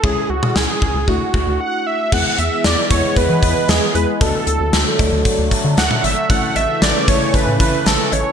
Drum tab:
CC |----------------|x---------------|----------------|----------------|
HH |----------------|--x-x-x-x-x-x-x-|x-x-x-x-x-x-x-x-|x-x-x-x-x-x-x-x-|
CB |----------------|----------------|------x---------|--x-----------x-|
SD |----o-----------|----o-------o---|----o-------o---|----o-------o---|
T2 |---o------------|----------------|-------------o--|----------------|
BD |o-----o-o-o-----|o-----o-o-o-----|o-----o-o-o-----|o-----o-o-o-----|